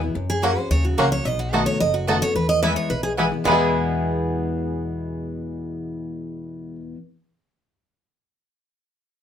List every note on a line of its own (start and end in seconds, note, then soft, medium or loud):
0.00 0.11 E2 medium
0.00 0.13 B2 medium
0.00 0.16 B3 soft
0.00 0.15 E4 medium
0.15 0.55 F#2 loud
0.15 0.68 F#2 medium
0.30 0.43 G#4 medium
0.42 0.56 F#3 medium
0.42 0.52 A#3 medium
0.42 0.56 A#3 medium
0.42 0.49 A#3 medium
0.42 0.57 C#4 medium
0.42 0.50 C#4 medium
0.42 0.52 F#4 medium
0.42 0.55 F#4 loud
0.42 0.50 F#4 medium
0.42 0.58 A#4 medium
0.42 0.52 C#5 medium
0.42 0.52 F#5 medium
0.57 0.71 C#4 medium
0.57 0.70 F#4 medium
0.57 0.70 C5 loud
0.70 0.94 D#2 medium
0.70 1.23 C#3 loud
0.70 0.84 C#5 loud
0.85 0.98 F#4 medium
0.98 1.21 C#2 medium
0.98 1.24 F#3 medium
0.98 1.07 A#3 medium
0.98 1.04 A#3 medium
0.98 1.24 A#3 medium
0.98 1.25 C#4 loud
0.98 1.05 C#4 medium
0.98 1.07 F#4 medium
0.98 1.05 F#4 medium
0.98 1.25 F#4 medium
0.98 1.11 A#4 medium
0.98 1.07 C#5 loud
0.98 1.08 F#5 loud
1.12 1.25 C#5 medium
1.25 1.65 B1 medium
1.25 1.78 B2 medium
1.25 1.39 D#5 loud
1.39 1.52 F#4 medium
1.52 1.79 D#3 medium
1.52 1.79 A3 medium
1.52 1.59 A3 medium
1.52 1.62 B3 medium
1.52 1.80 B3 medium
1.52 1.60 D#4 medium
1.52 1.62 F#4 medium
1.52 1.60 F#4 medium
1.52 1.80 F#4 loud
1.52 1.66 A4 medium
1.52 1.62 D#5 loud
1.52 1.63 A5 loud
1.66 1.80 C#5 medium
1.80 2.20 F#1 medium
1.80 2.33 F#2 medium
1.80 1.94 D#5 loud
1.94 2.07 F#4 medium
2.07 2.21 D#3 medium
2.07 2.21 A3 medium
2.07 2.14 A3 medium
2.07 2.17 B3 medium
2.07 2.22 B3 medium
2.07 2.15 D#4 medium
2.07 2.17 F#4 medium
2.07 2.15 F#4 medium
2.07 2.20 F#4 loud
2.07 2.22 A4 medium
2.07 2.17 D#5 medium
2.07 2.17 A5 loud
2.22 2.36 B3 soft
2.22 2.35 F#4 medium
2.22 2.35 C#5 loud
2.35 2.75 E2 medium
2.35 2.88 E2 medium
2.35 2.49 B4 medium
2.49 2.62 D#5 loud
2.62 2.89 E3 medium
2.62 2.89 G#3 medium
2.62 2.72 B3 medium
2.62 2.69 B3 medium
2.62 2.90 B3 medium
2.62 2.72 E4 medium
2.62 2.70 E4 medium
2.62 2.90 E4 medium
2.62 2.72 B4 loud
2.62 2.76 E5 loud
2.62 2.72 G#5 loud
2.76 2.90 C#5 medium
2.90 3.30 B1 medium
2.90 3.43 B2 medium
2.90 3.03 B4 medium
3.03 3.12 G#4 loud
3.17 3.31 E3 medium
3.17 3.32 G#3 medium
3.17 3.27 B3 medium
3.17 3.24 B3 medium
3.17 3.32 B3 medium
3.17 3.27 E4 medium
3.17 3.25 E4 medium
3.17 3.31 E4 medium
3.17 3.27 B4 medium
3.17 3.28 G#5 medium
3.32 3.46 B3 soft
3.32 3.45 E4 medium
3.44 6.95 E2 medium
3.44 6.75 E2 loud
3.44 6.95 B2 medium
3.44 6.97 E3 medium
3.44 6.76 G#3 medium
3.44 6.97 G#3 medium
3.44 6.94 B3 medium
3.44 6.78 B3 medium
3.44 6.98 B3 loud
3.44 6.95 E4 medium
3.44 6.75 G#4 medium
3.44 6.96 B4 medium
3.44 6.97 G#5 medium
3.48 6.98 E4 medium
3.48 6.80 E4 medium
3.48 6.82 G#4 medium